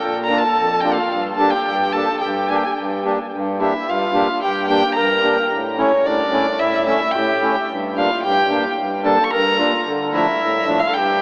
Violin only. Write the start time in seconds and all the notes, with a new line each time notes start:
Already playing: G5
0.24 A#5
0.38 A5
0.81 G5
0.94 F5
1.35 A5
1.50 G5
1.93 A5
2.21 G5
3.62 E5
3.90 F5
4.43 G5
4.68 G5
4.95 A#5
5.78 C#5
6.06 D5
6.59 E5
6.86 E5
7.11 G5
7.97 F5
8.23 G5
9.05 A5
9.24 C#6
9.30 A#5
10.13 E5
10.79 F5
10.93 G5